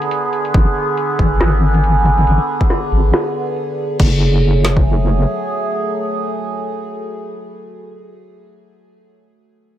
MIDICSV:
0, 0, Header, 1, 4, 480
1, 0, Start_track
1, 0, Key_signature, 3, "minor"
1, 0, Tempo, 431655
1, 604, Time_signature, 4, 2, 24, 8
1, 10879, End_track
2, 0, Start_track
2, 0, Title_t, "Synth drone"
2, 0, Program_c, 0, 95
2, 0, Note_on_c, 0, 50, 81
2, 0, Note_on_c, 0, 59, 77
2, 0, Note_on_c, 0, 68, 91
2, 4400, Note_off_c, 0, 50, 0
2, 4400, Note_off_c, 0, 59, 0
2, 4400, Note_off_c, 0, 68, 0
2, 4447, Note_on_c, 0, 54, 80
2, 4447, Note_on_c, 0, 57, 72
2, 4447, Note_on_c, 0, 68, 85
2, 9130, Note_off_c, 0, 54, 0
2, 9131, Note_off_c, 0, 57, 0
2, 9131, Note_off_c, 0, 68, 0
2, 10879, End_track
3, 0, Start_track
3, 0, Title_t, "Wobble bass"
3, 0, Program_c, 1, 39
3, 605, Note_on_c, 1, 32, 93
3, 728, Note_off_c, 1, 32, 0
3, 1326, Note_on_c, 1, 32, 96
3, 1548, Note_off_c, 1, 32, 0
3, 1566, Note_on_c, 1, 32, 85
3, 2511, Note_off_c, 1, 32, 0
3, 2528, Note_on_c, 1, 32, 96
3, 2649, Note_off_c, 1, 32, 0
3, 3246, Note_on_c, 1, 32, 98
3, 3468, Note_off_c, 1, 32, 0
3, 4446, Note_on_c, 1, 30, 90
3, 5840, Note_off_c, 1, 30, 0
3, 10879, End_track
4, 0, Start_track
4, 0, Title_t, "Drums"
4, 19, Note_on_c, 9, 42, 46
4, 125, Note_off_c, 9, 42, 0
4, 125, Note_on_c, 9, 42, 66
4, 236, Note_off_c, 9, 42, 0
4, 365, Note_on_c, 9, 42, 46
4, 476, Note_off_c, 9, 42, 0
4, 499, Note_on_c, 9, 42, 47
4, 604, Note_off_c, 9, 42, 0
4, 604, Note_on_c, 9, 42, 72
4, 605, Note_on_c, 9, 36, 104
4, 715, Note_off_c, 9, 42, 0
4, 716, Note_off_c, 9, 36, 0
4, 1083, Note_on_c, 9, 42, 69
4, 1194, Note_off_c, 9, 42, 0
4, 1323, Note_on_c, 9, 42, 45
4, 1325, Note_on_c, 9, 36, 55
4, 1434, Note_off_c, 9, 42, 0
4, 1436, Note_off_c, 9, 36, 0
4, 1563, Note_on_c, 9, 38, 105
4, 1563, Note_on_c, 9, 42, 71
4, 1674, Note_off_c, 9, 38, 0
4, 1674, Note_off_c, 9, 42, 0
4, 1938, Note_on_c, 9, 42, 48
4, 2043, Note_off_c, 9, 42, 0
4, 2043, Note_on_c, 9, 42, 67
4, 2154, Note_off_c, 9, 42, 0
4, 2284, Note_on_c, 9, 42, 47
4, 2395, Note_off_c, 9, 42, 0
4, 2417, Note_on_c, 9, 42, 46
4, 2525, Note_off_c, 9, 42, 0
4, 2525, Note_on_c, 9, 42, 75
4, 2636, Note_off_c, 9, 42, 0
4, 2900, Note_on_c, 9, 36, 54
4, 3004, Note_on_c, 9, 38, 53
4, 3004, Note_on_c, 9, 42, 72
4, 3011, Note_off_c, 9, 36, 0
4, 3115, Note_off_c, 9, 38, 0
4, 3115, Note_off_c, 9, 42, 0
4, 3246, Note_on_c, 9, 42, 49
4, 3357, Note_off_c, 9, 42, 0
4, 3486, Note_on_c, 9, 38, 107
4, 3486, Note_on_c, 9, 42, 73
4, 3597, Note_off_c, 9, 38, 0
4, 3597, Note_off_c, 9, 42, 0
4, 3860, Note_on_c, 9, 42, 49
4, 3965, Note_off_c, 9, 42, 0
4, 3965, Note_on_c, 9, 42, 71
4, 4076, Note_off_c, 9, 42, 0
4, 4204, Note_on_c, 9, 42, 48
4, 4315, Note_off_c, 9, 42, 0
4, 4338, Note_on_c, 9, 42, 48
4, 4443, Note_on_c, 9, 49, 78
4, 4445, Note_on_c, 9, 36, 102
4, 4450, Note_off_c, 9, 42, 0
4, 4554, Note_off_c, 9, 49, 0
4, 4556, Note_off_c, 9, 36, 0
4, 5166, Note_on_c, 9, 38, 55
4, 5278, Note_off_c, 9, 38, 0
4, 5300, Note_on_c, 9, 36, 71
4, 5411, Note_off_c, 9, 36, 0
4, 10879, End_track
0, 0, End_of_file